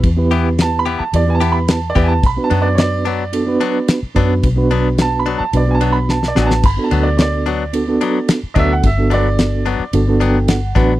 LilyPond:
<<
  \new Staff \with { instrumentName = "Upright piano" } { \time 4/4 \key b \minor \tempo 4 = 109 r4 \tuplet 3/2 { a''8 b''8 a''8 d''8 <gis'' a''>8 b''8 a''8 d''8 <gis'' a''>8 } | \tuplet 3/2 { b''8 a''8 d''8 } <cis'' d''>2 r4 | r4 \tuplet 3/2 { a''8 b''8 a''8 d''8 <gis'' a''>8 b''8 a''8 d''8 <gis'' a''>8 } | \tuplet 3/2 { b''8 a''8 d''8 } <cis'' d''>2 r8 <dis'' e''>16 fis''16 |
e''8 d''2 r4. | }
  \new Staff \with { instrumentName = "Reed electric piano" } { \time 4/4 \key b \minor << { r1 | r1 | r1 | r1 |
r2 r8 g''8 fis''4 | } \\ { r16 <b e' g' b'>4~ <b e' g' b'>16 r8 <b e' g' d''>16 <b e' g' b'>4 r16 <b e' g' b'>8 | r16 <b d' fis' b'>4~ <b d' fis' b'>16 r8 <b d' fis' a'>16 <b d' fis' b'>4 r16 <b d' fis' b'>8 | r16 <b d' fis' b'>4~ <b d' fis' b'>16 r8 <b d' fis' b'>16 <b d' fis' b'>4 r16 <b d' fis' b'>8 | r16 <b d' fis' a'>4~ <b d' fis' a'>16 r8 <b d' fis' a'>16 <b d' fis' a'>4 r16 <b d' fis' a'>8 |
r16 <b d' fis' a'>4~ <b d' fis' a'>16 r8 <b d' fis' a'>16 <b d' fis' a'>4 r16 <b d' fis' b'>8 | } >> }
  \new Staff \with { instrumentName = "Clean electric guitar" } { \time 4/4 \key b \minor r8 <e b e' g'>8 r8 <e b e' g'>8 r8 <e b e' g'>8 r8 <e b e' g'>8 | r8 <fis b d'>8 r8 <fis b d'>8 r8 <fis b d'>8 r8 <fis b d'>8 | r8 <fis b d'>8 r8 <fis b d'>8 r8 <fis b d'>8 r8 <fis b d'>8 | r8 <fis b d'>8 r8 <fis b d'>8 r8 <fis b d'>8 r8 <fis b d'>8 |
r8 <fis b d'>8 r8 <fis b d'>8 r8 <fis b d'>8 r8 <fis b d'>8 | }
  \new Staff \with { instrumentName = "Fingered electric bass" } { \clef bass \time 4/4 \key b \minor e,4.~ e,16 r16 e,4. e,8 | b,,16 r16 fis,2 r4 fis,8 | b,,4.~ b,,16 r16 b,,4. a,,8 | g,,16 r16 d,2 r4 d,8 |
g,,4.~ g,,16 r16 g,,4. a,,8 | }
  \new DrumStaff \with { instrumentName = "Drums" } \drummode { \time 4/4 <bd cymr>8 cymr8 <cymr sn>8 cymr8 cymr8 cymr8 <cymr sn>8 <bd cymr>8 | <bd cymr>8 cymr8 <cymr sn>8 cymr8 cymr8 cymr8 <cymr sn>8 <bd cymr>8 | <bd cymr>8 cymr8 <cymr sn>8 cymr8 cymr8 cymr8 sn16 sn16 sn16 sn16 | <cymc bd cymr>8 cymr8 <cymr sn>8 cymr8 cymr8 cymr8 <cymr sn>8 <bd cymr>8 |
<bd cymr>8 cymr8 <cymr sn>8 cymr8 cymr8 cymr8 <cymr sn>8 <bd cymr>8 | }
>>